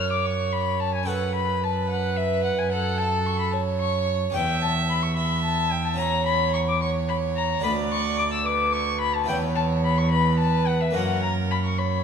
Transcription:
0.00 4.31 F#2 medium
0.00 1.02 C#4 soft
0.00 1.02 G#4 medium
0.00 1.03 B4 soft
0.00 1.04 C#5 medium
0.00 0.11 F6 medium
0.12 0.27 D6 medium
0.26 0.54 C#6 medium
0.53 0.82 B5 loud
0.80 0.94 A5 loud
0.95 1.09 G#5 medium
1.03 4.29 C#4 medium
1.03 4.30 A4 soft
1.03 4.31 C#5 soft
1.08 2.73 B4 medium
1.08 1.35 F#5 medium
1.35 1.65 B5 loud
1.64 1.89 A5 medium
1.89 2.18 F#5 medium
2.17 2.43 E5 loud
2.44 2.60 F#5 medium
2.58 2.71 G#5 medium
2.71 3.54 A4 medium
2.71 3.00 F#5 loud
2.98 3.27 A5 loud
3.26 3.39 C#6 medium
3.39 3.51 B5 medium
3.52 4.37 C#5 medium
3.52 3.60 A5 medium
3.80 4.07 C#6 medium
4.30 5.93 C#4 medium
4.30 5.93 G4 medium
4.30 5.94 C#5 medium
4.30 4.60 G5 loud
4.35 7.59 E2 medium
4.35 7.60 E2 medium
4.35 5.16 E5 loud
4.62 4.70 A5 loud
4.89 5.04 B5 loud
5.03 5.16 C#6 medium
5.16 5.97 E5 medium
5.16 5.43 B5 loud
5.44 5.73 A5 loud
5.71 5.86 G5 medium
5.85 6.00 A5 loud
5.94 7.57 C#4 medium
5.94 7.58 F#4 medium
5.94 7.59 C#5 medium
5.99 6.80 C#5 medium
5.99 6.25 A#5 loud
6.26 6.53 B5 loud
6.54 6.59 C#6 loud
6.69 6.81 D6 medium
6.82 7.65 C#5 medium
6.82 6.90 C#6 loud
7.09 7.17 B5 medium
7.36 7.63 A#5 loud
7.59 9.23 D4 medium
7.59 9.23 F#4 medium
7.59 9.24 B4 medium
7.63 9.30 D2 medium
7.63 9.25 D2 medium
7.63 8.45 D5 medium
7.63 7.72 B5 loud
7.91 8.18 C#6 loud
8.18 8.24 D6 loud
8.32 8.47 E6 medium
8.45 9.27 B4 medium
8.45 8.74 D6 loud
8.72 9.00 C#6 loud
9.01 9.16 B5 loud
9.15 9.28 A5 loud
9.24 10.88 B3 medium
9.24 10.89 E4 medium
9.24 10.90 B4 medium
9.28 10.94 E2 medium
9.28 10.91 E2 medium
9.28 10.10 C#5 medium
9.28 9.36 G5 loud
9.55 9.63 A5 loud
9.84 9.99 B5 medium
9.98 10.11 C#6 medium
10.11 10.97 B4 medium
10.11 10.38 B5 loud
10.39 10.68 A5 loud
10.67 10.82 F#5 medium
10.81 10.96 E5 medium
10.91 12.04 F#2 medium
10.91 12.04 A#3 medium
10.91 12.04 C#4 medium
10.91 12.04 F#4 soft
10.91 11.22 F#5 medium
10.95 12.04 F#2 medium
10.95 11.80 A#4 medium
11.23 11.31 A#5 loud
11.51 11.56 B5 loud
11.65 11.80 C#6 medium
11.78 12.04 C#5 medium
11.78 12.04 B5 medium

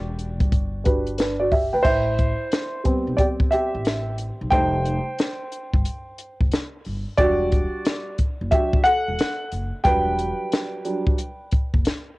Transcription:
0.00 0.40 E1 loud
0.00 0.80 D4 medium
0.00 0.81 F#4 medium
0.00 0.82 G4 medium
0.00 0.83 D5 medium
0.18 closed hi-hat medium
0.40 1.70 G1 medium
0.40 kick medium
0.40 closed hi-hat medium
0.52 kick loud
0.52 closed hi-hat medium
0.84 1.18 D4 soft
0.84 1.18 F#4 soft
0.84 1.18 G4 soft
0.84 1.17 B4 medium
0.84 kick medium
0.84 closed hi-hat medium
1.06 closed hi-hat medium
1.18 1.40 D4 medium
1.18 1.39 B4 medium
1.18 snare loud
1.18 closed hi-hat medium
1.40 1.51 F#4 medium
1.40 1.51 D5 medium
1.52 1.73 G4 soft
1.52 1.73 E5 medium
1.52 kick medium
1.52 open hi-hat soft
1.73 1.83 D2 medium
1.73 2.05 B4 medium
1.73 2.05 G5 medium
1.83 2.31 A1 loud
1.83 2.81 E4 medium
1.83 2.80 C5 loud
1.83 kick loud
1.83 crash medium
2.19 kick medium
2.19 closed hi-hat medium
2.52 snare loud
2.52 closed hi-hat medium
2.84 4.47 G3 medium
2.84 4.47 B3 soft
2.84 4.48 C4 medium
2.84 kick medium
2.84 closed hi-hat medium
3.07 3.17 B1 medium
3.17 3.27 G4 medium
3.17 3.25 D5 medium
3.17 kick medium
3.17 closed hi-hat medium
3.40 kick loud
3.51 4.15 G4 medium
3.51 4.14 E5 medium
3.51 closed hi-hat medium
3.75 4.29 A1 medium
3.85 snare medium
3.85 closed hi-hat medium
4.18 closed hi-hat medium
4.41 4.50 B1 medium
4.50 4.98 F1 loud
4.50 5.00 G3 medium
4.50 5.00 A3 medium
4.50 5.01 D#4 medium
4.50 6.48 C5 medium
4.50 6.47 G5 loud
4.50 kick loud
4.50 closed hi-hat medium
4.85 closed hi-hat medium
5.19 snare loud
5.19 closed hi-hat medium
5.52 closed hi-hat medium
5.74 5.83 G1 loud
5.74 kick medium
5.85 closed hi-hat medium
6.18 closed hi-hat medium
6.41 6.50 F1 medium
6.41 kick medium
6.52 snare loud
6.52 closed hi-hat medium
6.85 7.04 G1 medium
6.85 open hi-hat soft
7.18 7.64 E1 medium
7.18 8.14 G3 medium
7.18 8.15 D4 medium
7.18 8.15 F#4 medium
7.18 8.14 D5 loud
7.18 kick medium
7.18 closed hi-hat medium
7.52 kick medium
7.52 closed hi-hat medium
7.85 snare loud
7.85 closed hi-hat medium
8.18 kick medium
8.18 closed hi-hat medium
8.41 8.50 F#1 medium
8.51 8.82 G3 soft
8.51 8.82 D4 soft
8.51 8.83 F#4 medium
8.51 8.84 G4 medium
8.51 8.82 E5 medium
8.51 kick loud
8.51 closed hi-hat medium
8.73 kick loud
8.84 9.48 A4 medium
8.84 9.47 F#5 loud
8.84 closed hi-hat medium
9.08 9.17 E1 medium
9.19 snare loud
9.19 closed hi-hat medium
9.51 9.70 F#1 medium
9.51 closed hi-hat medium
9.84 10.31 E1 loud
9.84 10.81 F#3 medium
9.84 10.81 G3 medium
9.84 10.81 D4 medium
9.84 11.82 B4 medium
9.84 11.80 G5 loud
9.84 kick loud
9.84 closed hi-hat medium
10.19 closed hi-hat medium
10.52 snare loud
10.52 closed hi-hat medium
10.85 11.15 F#3 medium
10.85 11.15 G3 soft
10.85 11.15 D4 soft
10.85 closed hi-hat medium
11.07 kick medium
11.18 closed hi-hat medium
11.51 kick loud
11.51 closed hi-hat medium
11.74 11.83 F#1 medium
11.74 kick medium
11.85 snare loud
11.85 closed hi-hat medium

